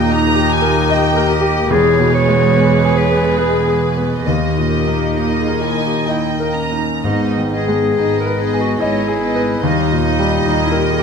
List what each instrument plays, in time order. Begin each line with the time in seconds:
Already playing: cello section D#2, double bass section D#2, grand piano D#2 A#2 A#3, french horn section A#3 G4, viola section A#3 G4, clarinet D#4, violin section D#5 G5
0.10 grand piano D#4, violin section A#5
0.35 grand piano G4
0.50 violin section G#5
0.62 grand piano A#4
0.90 grand piano D#5, violin section G5
1.16 grand piano A#4
1.29 clarinet G4, violin section D#5
1.41 grand piano G4
1.70 double bass section E1, grand piano E2, cello section E2, viola section G#3 G#4, french horn section B3 G#4, clarinet G#4, violin section B4 C#5
1.99 grand piano B2
2.14 clarinet C#5
2.28 grand piano G#3
2.56 grand piano B3, violin section B4
2.84 grand piano G#4
2.97 clarinet B4, violin section C#5
3.11 grand piano B3
3.37 clarinet G#4, violin section B4, grand piano B4
3.68 grand piano G#4
3.97 grand piano B3
4.26 cello section D#2, double bass section D#2, grand piano D#2, viola section A#3 D#4, french horn section A#3 A#4, clarinet G4, violin section D#5
4.58 grand piano A#2
4.88 grand piano A#3
5.17 grand piano D#4, violin section D#5
5.40 clarinet G#4
5.48 grand piano A#4
5.61 clarinet E4, violin section G#5
5.77 grand piano D#4
5.86 clarinet G4
6.07 clarinet E4, grand piano D#5, violin section G5
6.32 clarinet D#4
6.40 grand piano A#4
6.53 clarinet C#4, violin section A#5
6.72 grand piano D#4
7.03 double bass section G#1, cello section G#2, timpani G#2, grand piano G#2, viola section B3 D#4, french horn section B3 G#4, clarinet D#4, violin section D#5
7.38 grand piano D#3
7.52 viola section B3 D#4, clarinet G#4, violin section D#5
7.68 grand piano G#3
7.96 double bass section G#1, cello section G#2, viola section B3 D#4, grand piano D#4, violin section B4 D#5
8.20 clarinet A#4
8.26 grand piano B4
8.39 viola section B3 D#4, clarinet G#4, violin section D#5
8.53 grand piano G#4
8.60 clarinet F#4
8.79 double bass section G#1, cello section G#2, viola section B3 D#4, clarinet E4, violin section C#5 D#5, grand piano D#5
9.08 grand piano G#4
9.20 viola section B3 D#4, violin section B4 D#5
9.36 grand piano B4
9.61 cello section D#2, double bass section D#2, grand piano D#2, viola section G3 D#4, french horn section A#3 G4, clarinet D#4, violin section D#5
9.92 grand piano A#2
10.03 viola section G3 D#4, violin section D#5
10.19 grand piano G3
10.44 cello section D#2, double bass section D#2, viola section G3 D#4, grand piano D#4, violin section D#5
10.65 clarinet E4
10.72 grand piano A#4
10.79 clarinet G4
10.84 viola section G3 D#4, violin section D#5
10.91 clarinet G#4
10.99 grand piano G4, clarinet A#4